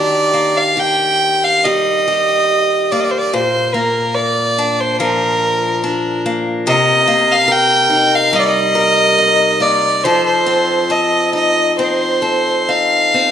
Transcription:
0.00 3.34 D#3 medium
0.00 3.18 D4 soft
0.00 0.76 G4 soft
0.00 0.59 D5 medium
0.34 2.92 A#3 soft
0.57 0.81 F5 medium
0.77 2.06 G4 soft
0.77 1.46 G5 medium
1.44 1.66 F5 medium
1.65 3.42 G3 medium
1.65 2.93 D#5 medium
2.08 3.33 G4 medium
2.92 3.74 A#3 soft
2.92 3.02 D5 medium
3.00 3.06 D#5 soft
3.04 3.13 D5 medium
3.11 3.20 C5 soft
3.18 3.35 D5 medium
3.33 6.66 A#2 medium
3.33 3.75 C5 medium
3.74 6.25 A#3 soft
3.74 4.16 A#4 medium
4.15 4.82 D5 medium
4.58 5.82 D4 medium
4.80 5.01 C5 medium
5.00 6.74 F3 medium
5.00 6.21 A#4 medium
5.84 6.75 D4 medium
6.26 7.07 A#3 medium
6.67 10.04 C3 medium
6.67 7.46 A#4 medium
6.67 7.33 D#5 medium
7.08 9.59 A#3 medium
7.32 7.53 F5 medium
7.48 8.74 A#4 medium
7.52 8.17 G5 medium
7.90 9.18 D#4 medium
8.15 8.37 F5 medium
8.33 10.04 G3 medium
8.33 8.41 D#5 medium
8.39 8.48 D5 medium
8.47 9.63 D#5 loud
8.75 10.04 A#4 medium
9.18 10.93 D#4 soft
9.60 10.12 A#3 soft
9.60 10.06 D5 medium
10.04 13.31 F3 medium
10.04 10.89 A4 medium
10.04 10.25 C5 medium
10.26 10.93 C5 medium
10.46 11.78 C4 soft
10.90 12.22 A4 soft
10.90 11.33 D#5 medium
11.33 12.68 D#4 soft
11.33 11.75 D#5 medium
11.79 13.14 C4 medium
11.79 12.70 C5 medium
12.22 13.31 A4 soft
12.69 13.31 D#4 soft
12.69 13.31 F5 medium
13.14 13.31 C4 soft

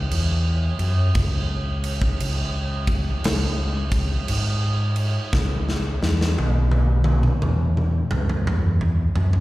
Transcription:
0.11 0.67 E2 medium
0.11 crash medium
0.79 1.09 F#2 medium
0.79 crash medium
1.15 2.02 C#2 medium
1.15 kick loud
1.15 crash medium
1.84 crash medium
2.02 kick medium
2.20 3.07 C#2 medium
2.20 crash medium
2.87 kick medium
2.87 crash medium
3.24 4.11 C#2 medium
3.24 snare loud
3.24 crash medium
3.91 kick medium
3.91 crash medium
4.28 5.16 G#2 medium
4.28 crash medium
4.96 crash medium
5.33 5.90 C#2 loud
5.33 kick loud
5.33 snare medium
5.69 snare medium
6.02 6.32 E2 medium
6.02 snare medium
6.21 snare medium
6.38 7.25 B1 medium
6.38 high tom medium
6.72 high tom medium
7.04 high tom medium
7.23 mid tom medium
7.42 7.99 E2 medium
7.42 mid tom medium
7.77 mid tom medium
8.11 8.41 C#2 medium
8.11 mid tom loud
8.29 mid tom medium
8.47 9.04 E2 loud
8.47 mid tom loud
8.81 floor tom medium
9.16 9.40 F#2 medium
9.16 floor tom loud
9.33 floor tom medium

